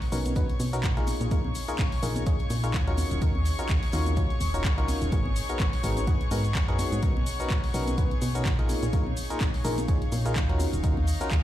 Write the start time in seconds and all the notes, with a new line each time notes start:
Already playing: D#4 G#4 C#5 C#6
0.02 open hi-hat
0.12 B1 B3 C#4 D#4 F#4 A#4, open hi-hat, tambourine, shaker
0.16 F5
0.25 closed hi-hat, tambourine, high conga, shaker
0.35 F#2 B3 C#4 D#4 F#4 B4, kick, closed hi-hat, tambourine, shaker
0.49 closed hi-hat, tambourine
0.59 B2, open hi-hat, tambourine, high conga, shaker
0.73 B3 C#4 D#4 F#4 A#4, closed hi-hat, tambourine, shaker
0.84 A#1, kick, clap, closed hi-hat, tambourine, shaker
0.97 A#3 D#4 F4 G#4 A#4, closed hi-hat
1.07 open hi-hat, tambourine, high conga, shaker
1.21 A#2, closed hi-hat, tambourine, shaker
1.31 A#1 A#3 D#4 F4 G#4 A#4, kick, closed hi-hat, tambourine, shaker
1.45 high conga
1.55 open hi-hat, tambourine, shaker
1.68 A#3 D#4 F4 G#4 A#4, closed hi-hat, tambourine, shaker
1.78 A#1, kick, clap, closed hi-hat, tambourine, high conga, shaker
1.92 open hi-hat
2.03 A#1 A#3 D#4 F4 G#4 A#4, open hi-hat, tambourine, shaker
2.16 closed hi-hat, tambourine, high conga, shaker
2.26 G#2 A#3 D#4 F4 G#4 C#5, kick, closed hi-hat, tambourine, shaker
2.39 closed hi-hat, tambourine
2.50 A#2, open hi-hat, tambourine, high conga, shaker
2.63 A#3 D#4 F4 G#4 A#4, closed hi-hat, tambourine, shaker
2.74 D#2, kick, clap, closed hi-hat, tambourine, shaker
2.87 C#4 D#4 F4 F#4 A#4, closed hi-hat
2.97 open hi-hat, tambourine, high conga, shaker
3.11 D#1, closed hi-hat, tambourine, shaker
3.22 D#2 C#4 D#4 F4 F#4 A#4, kick, closed hi-hat, tambourine, shaker
3.35 high conga
3.46 open hi-hat, tambourine, shaker
3.58 C#4 D#4 F4 F#4 A#4, closed hi-hat, tambourine, shaker
3.69 D#2, kick, clap, closed hi-hat, tambourine, high conga, shaker
3.83 open hi-hat
3.92 D#2 C#4 D#4 F4 F#4 A#4, open hi-hat, tambourine, shaker
4.06 closed hi-hat, tambourine, high conga, shaker
4.16 C#2 C#4 D#4 F4 F#4 C#5, kick, closed hi-hat, tambourine, shaker
4.30 closed hi-hat, tambourine
4.40 D#1, open hi-hat, tambourine, high conga, shaker
4.54 C#4 D#4 F4 F#4 A#4, closed hi-hat, tambourine, shaker
4.65 C#2, kick, clap, closed hi-hat, shaker
4.78 C#4 D#4 F4 F#4 A#4, closed hi-hat
4.88 open hi-hat, tambourine, high conga, shaker
5.02 D#1, closed hi-hat, tambourine, shaker
5.12 G#1 B3 D#4 F#4 G#4 A#4, kick, closed hi-hat, tambourine, shaker
5.26 high conga
5.36 open hi-hat, tambourine, shaker
5.46 B3 D#4 F#4 G#4 A#4 F#5, closed hi-hat, tambourine, shaker
5.60 G#1, kick, clap, closed hi-hat, tambourine, high conga, shaker
5.73 open hi-hat
5.84 G#1 B3 D#4 F#4 G#4 A#4, open hi-hat, tambourine, shaker
5.97 closed hi-hat, tambourine, high conga, shaker
6.07 F#2 B3 D#4 F#4 G#4 B4, kick, closed hi-hat, tambourine, shaker
6.21 closed hi-hat, tambourine
6.31 G#2 B3 D#4 F#4 G#4 A#4, open hi-hat, tambourine, high conga, shaker
6.45 closed hi-hat, tambourine, shaker
6.55 F#2, kick, clap, closed hi-hat, tambourine, shaker
6.68 B3 D#4 F#4 G#4 A#4, closed hi-hat
6.79 B3 D#4 F#4 G#4 C#5, open hi-hat, tambourine, high conga, shaker
6.92 G#2, closed hi-hat, tambourine, shaker
7.03 B1 B3 C#4 D#4 F#4 A#4, kick, closed hi-hat, tambourine, shaker
7.17 high conga
7.26 open hi-hat, tambourine, shaker
7.40 B3 C#4 D#4 F#4 A#4, closed hi-hat, tambourine, shaker
7.50 B1, kick, clap, closed hi-hat, tambourine, high conga, shaker
7.64 open hi-hat
7.74 B1 B3 C#4 D#4 F#4 A#4, open hi-hat, tambourine, shaker
7.87 closed hi-hat, tambourine, high conga, shaker
7.98 F#2 B3 C#4 D#4 F#4 B4, kick, closed hi-hat, tambourine, shaker
8.11 closed hi-hat, tambourine
8.22 B2, open hi-hat, tambourine, high conga, shaker
8.35 B3 C#4 D#4 F#4 A#4, closed hi-hat, tambourine, shaker
8.46 A#1, kick, clap, closed hi-hat, tambourine, shaker
8.59 A#3 D#4 F4 G#4 A#4, closed hi-hat
8.69 open hi-hat, tambourine, high conga, shaker
8.83 A#2, closed hi-hat, tambourine, shaker
8.93 A#1 A#3 D#4 F4 G#4 A#4, kick, closed hi-hat, tambourine, shaker
9.07 high conga
9.17 open hi-hat, tambourine, shaker
9.30 A#3 D#4 F4 G#4 A#4, closed hi-hat, tambourine, shaker
9.40 A#1, kick, clap, closed hi-hat, tambourine, high conga, shaker
9.54 F5, open hi-hat
9.64 A#1 A#3 D#4 F4 G#4 A#4, open hi-hat, tambourine, shaker
9.78 closed hi-hat, tambourine, high conga, shaker
9.88 G#2 A#3 D#4 F4 G#4 C#5, kick, closed hi-hat, tambourine, shaker
10.02 closed hi-hat, tambourine
10.12 A#2, open hi-hat, tambourine, high conga, shaker
10.25 A#3 D#4 F4 G#4 A#4, closed hi-hat, tambourine, shaker
10.36 D#2, kick, clap, closed hi-hat, tambourine, shaker
10.49 C#4 D#4 F4 F#4 A#4, closed hi-hat
10.60 D#4, open hi-hat, tambourine, high conga, shaker
10.73 D#1, closed hi-hat, tambourine, shaker
10.84 D#2 C#4 D#4 F4 F#4 A#4, kick, closed hi-hat, tambourine, shaker
10.97 high conga
11.08 open hi-hat, tambourine, shaker
11.20 C#4 D#4 F4 F#4 A#4, closed hi-hat, tambourine, shaker
11.25 G#4
11.31 D#2, kick, clap, closed hi-hat, tambourine, high conga, shaker
11.39 C#5